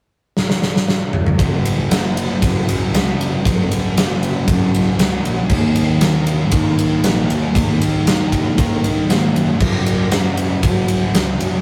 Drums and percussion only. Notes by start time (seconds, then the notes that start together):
0.37 snare
0.50 snare
0.62 snare
0.76 snare
0.88 snare
1.13 mid tom
1.27 mid tom
1.39 kick, ride
1.65 ride
1.91 snare, ride
2.17 ride
2.42 kick, ride
2.69 ride
2.94 snare, ride
3.21 ride
3.45 kick, ride
3.72 ride
3.97 snare, ride
4.23 ride
4.48 kick, ride
4.74 ride
4.99 snare, ride
5.25 ride
5.50 kick, crash
5.76 ride
6.01 snare, ride
6.27 ride
6.51 kick, ride
6.79 ride
7.04 snare, ride
7.30 ride
7.55 kick, ride
7.82 ride
8.07 snare, ride
8.32 kick, ride
8.58 kick, ride
8.84 ride
9.10 snare, ride
9.36 ride
9.61 kick, crash
9.86 ride
10.12 snare, ride
10.37 ride
10.63 kick, ride
10.88 ride
11.15 snare, ride
11.40 ride